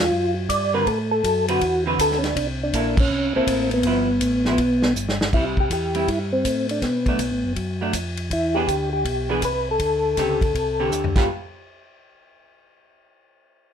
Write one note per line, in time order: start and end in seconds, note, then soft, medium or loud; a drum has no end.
0.00 0.11 E2 medium
0.00 0.34 F4 loud
0.12 0.48 F#2 medium
0.48 0.85 G2 medium
0.48 0.74 D5 loud
0.48 kick soft
0.48 hi-hat pedal medium
0.48 ride medium
0.74 0.85 D3 medium
0.74 0.86 C4 medium
0.74 0.86 F#4 medium
0.74 0.87 A#4 medium
0.74 0.86 B4 medium
0.86 1.23 A2 medium
0.86 0.98 A4 medium
0.86 kick soft
0.86 ride soft
1.11 1.46 A4 loud
1.24 1.60 F#2 medium
1.24 kick soft
1.24 hi-hat pedal soft
1.24 ride medium
1.48 1.60 D3 medium
1.48 1.60 C4 medium
1.48 1.61 F#4 medium
1.48 1.84 F#4 medium
1.48 1.61 B4 medium
1.48 ride medium
1.61 1.97 E2 medium
1.61 kick soft
1.61 ride medium
1.86 2.33 D3 medium
1.86 2.34 C4 medium
1.86 2.34 F#4 medium
1.86 2.34 B4 medium
1.99 2.35 D2 medium
1.99 2.18 A4 loud
1.99 kick soft
1.99 hi-hat pedal medium
1.99 ride medium
2.12 snare soft
2.19 2.24 C#4 medium
2.24 2.35 D4 medium
2.24 snare soft
2.24 ride soft
2.36 2.72 C2 medium
2.36 2.47 D4 medium
2.36 kick soft
2.36 ride medium
2.63 2.96 D4 medium
2.73 3.09 A#1 medium
2.73 2.95 A#3 medium
2.73 2.96 E4 medium
2.73 2.96 A4 medium
2.73 kick soft
2.73 hi-hat pedal soft
2.73 ride medium
2.97 3.33 C#4 loud
2.97 kick medium
2.97 crash medium
3.10 3.33 C2 medium
3.35 3.41 C2 soft
3.35 3.83 A#3 medium
3.35 3.70 C4 loud
3.35 3.83 E4 medium
3.35 3.83 A4 medium
3.47 3.83 A1 medium
3.47 kick soft
3.47 hi-hat pedal medium
3.47 ride medium
3.71 4.93 B3 loud
3.71 ride soft
3.83 4.20 G1 medium
3.83 4.07 F3 medium
3.83 4.07 B3 medium
3.83 4.07 E4 medium
3.83 kick soft
3.83 ride medium
4.21 4.57 A1 medium
4.21 kick soft
4.21 hi-hat pedal soft
4.21 ride medium
4.45 4.58 F3 medium
4.45 4.59 B3 medium
4.45 4.59 E4 medium
4.45 snare soft
4.58 4.95 B1 medium
4.58 kick soft
4.58 ride medium
4.82 snare medium
4.96 5.32 G1 medium
4.96 hi-hat pedal medium
5.09 snare medium
5.21 snare medium
5.33 5.69 C2 medium
5.33 5.56 G3 soft
5.33 5.56 C4 medium
5.33 5.45 E4 medium
5.33 5.56 E4 soft
5.33 kick medium
5.33 crash medium
5.57 5.71 G4 medium
5.57 kick medium
5.70 6.06 E2 medium
5.70 6.10 G4 loud
5.70 kick soft
5.70 hi-hat pedal soft
5.70 ride medium
5.94 6.06 G3 soft
5.94 6.07 C4 medium
5.94 6.07 E4 medium
5.94 ride soft
6.08 6.44 G2 medium
6.08 6.19 E4 medium
6.08 kick soft
6.08 ride soft
6.33 6.67 C4 medium
6.44 6.81 A2 medium
6.44 kick soft
6.44 hi-hat pedal medium
6.44 ride medium
6.69 6.82 D4 medium
6.69 ride soft
6.82 7.18 B2 medium
6.82 7.53 B3 medium
6.82 kick soft
6.82 snare soft
6.82 ride soft
7.06 7.19 F#3 medium
7.06 7.19 A3 medium
7.06 7.19 D4 medium
7.06 kick soft
7.06 ride soft
7.19 7.31 B1 medium
7.19 kick soft
7.19 hi-hat pedal medium
7.19 ride medium
7.32 7.44 A1 medium
7.44 7.56 F#1 medium
7.56 7.93 F#2 medium
7.56 kick soft
7.56 ride soft
7.81 7.93 F#3 medium
7.81 7.93 A3 medium
7.81 7.93 D4 medium
7.93 8.30 F2 medium
7.93 kick soft
7.93 hi-hat pedal medium
7.93 ride medium
8.17 ride soft
8.30 8.67 E2 medium
8.30 8.57 E4 medium
8.30 kick soft
8.30 ride medium
8.54 8.67 E3 medium
8.54 8.67 B3 medium
8.54 8.67 D4 medium
8.54 8.90 G4 loud
8.54 8.68 G#4 medium
8.68 9.04 D2 medium
8.68 kick soft
8.68 hi-hat pedal medium
8.68 ride soft
8.93 9.31 G4 loud
9.05 9.41 B1 medium
9.05 kick soft
9.05 ride medium
9.29 9.41 E3 medium
9.29 9.42 B3 medium
9.29 9.42 D4 medium
9.29 9.42 G#4 medium
9.42 9.79 C2 medium
9.42 9.69 B4 loud
9.42 kick soft
9.42 hi-hat pedal medium
9.42 ride medium
9.71 10.90 A4 medium
9.79 10.16 D2 medium
9.79 kick soft
9.79 ride medium
10.17 10.53 C#2 medium
10.17 10.40 D3 soft
10.17 10.40 C4 medium
10.17 10.40 G4 medium
10.17 10.40 A4 medium
10.17 kick soft
10.17 snare soft
10.17 hi-hat pedal soft
10.17 ride medium
10.41 kick medium
10.41 ride soft
10.55 10.91 C2 medium
10.55 kick soft
10.55 ride soft
10.80 11.17 D3 medium
10.80 11.16 C4 medium
10.80 11.16 G4 medium
10.80 11.16 A4 medium
10.91 11.15 D2 medium
10.91 hi-hat pedal medium
11.04 floor tom medium
11.15 11.28 G1 medium
11.15 11.28 G3 medium
11.15 11.28 B3 soft
11.15 11.28 F4 medium
11.15 11.29 G4 medium
11.15 11.29 A4 medium
11.15 kick medium
11.15 snare medium
11.15 crash medium